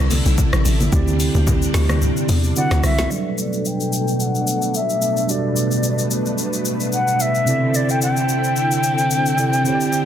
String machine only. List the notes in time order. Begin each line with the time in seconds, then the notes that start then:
Already playing: D3 A3 E4
0.92 C3 G3 D4
2.56 F#3 E4
3.11 B2 A3 D4 A4
5.29 B4
7.47 D3 C4 E4 A4
9.65 G4